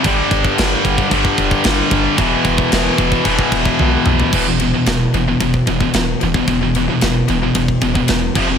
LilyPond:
<<
  \new Staff \with { instrumentName = "Distorted electric guitar" } { \clef bass \time 4/4 \key e \minor \tempo 4 = 112 <g, d g>2 <g, d g>2 | <e, b, e>2 <e, b, e>2 | <e, b, e>16 <e, b,>16 <e, b,>16 <e, b,>16 <e, b,>8 <e, b,>16 <e, b,>16 <e, b,>8 <e, b,>16 <e, b,>16 <e, b,>8 <e, b,>16 <e, b,>16 | <e, b,>16 <e, b,>16 <e, b,>16 <e, b,>16 <e, b,>8 <e, b,>16 <e, b,>16 <e, b,>8 <e, b,>16 <e, b,>16 <e, b,>8 <f, c f>16 <f, c>16 | }
  \new Staff \with { instrumentName = "Distorted electric guitar" } { \clef bass \time 4/4 \key e \minor <g, d g>2 <g, d g>2 | <e, b, e>2 <e, b, e>2 | <e, b, e>16 <e, b,>16 <e, b,>16 <e, b,>16 <e, b,>8 <e, b,>16 <e, b,>16 <e, b,>8 <e, b,>16 <e, b,>16 <e, b,>8 <e, b,>16 <e, b,>16 | <e, b,>16 <e, b,>16 <e, b,>16 <e, b,>16 <e, b,>8 <e, b,>16 <e, b,>16 <e, b,>8 <e, b,>16 <e, b,>16 <e, b,>8 <f, c f>16 <f, c>16 | }
  \new Staff \with { instrumentName = "Sub bass" } { \clef bass \time 4/4 \key e \minor g,,8 g,,8 g,,8 g,,8 g,,8 e,,8 g,,8 g,,8 | e,,8 e,,8 e,,8 e,,8 e,,8 e,,8 b,,8 b,,8 | e,,4 e,,8 e,,8 e,,8 e,,8 e,,8 e,,8 | e,,4 e,,8 e,,8 e,,8 e,,8 e,,8 f,,8 | }
  \new DrumStaff \with { instrumentName = "Drums" } \drummode { \time 4/4 <cymc bd>8 <cymc bd>16 bd16 <cymc sn>8 <cymc bd>16 bd16 <cymc bd>16 bd16 <cymc bd>16 bd16 <cymc sn>8 <cymc bd>8 | <cymc bd>8 <cymc bd>16 bd16 <cymc sn>8 <cymc bd>16 bd16 <cymc bd>16 bd16 <cymc bd>16 bd16 tommh8 toml16 tomfh16 | <cymc bd>8 cymr8 <cymr sn>8 cymr8 <bd cymr>16 bd16 <bd cymr>16 bd16 <cymr sn>8 cymr16 bd16 | <bd cymr>8 cymr8 <cymr sn>8 cymr8 <bd cymr>16 bd16 <bd cymr>16 bd16 <cymr sn>8 <cymc bd>8 | }
>>